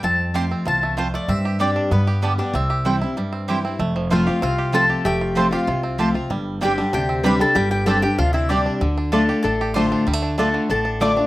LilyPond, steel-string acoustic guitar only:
\new Staff \with { instrumentName = "Steel-string acoustic guitar" } { \time 4/4 \key f \lydian \tempo 4 = 191 << { r4 <f a c' f'>4 r2 | r4 <g c' d' g'>4 r4 <d g b g'>8 <b g'>8 | r4 <e g c' e'>8 <c' e'>8 r4 <e g c' e'>8 <c' e'>8 | r4 <f a c' f'>8 <c' f'>8 r4 <f a c' f'>4 |
r4 <f a c' f'>8 <c' f'>8 r4 <f a c' f'>8 <c' f'>8 | r4 <g c' d' g'>8 <d' g'>8 r4 <g c' d' g'>8 <d' g'>8 | r4 <g c' d' g'>8 <d' g'>8 r4 <g c' d' g'>4 | r4 <d a d' f'>8 <d' f'>8 r4 <d a d' f'>4 |
r4 <d a d' f'>4 r4 <d a d' f'>8 <d' f'>8 | } \\ { f,2 e,4 f,4 | g,2 g,2 | c2 g,2 | f,2 c2 |
f,2 c2 | g,2 c2 | g,2 c2 | d2 a,2 |
d2 a,2 | } >> }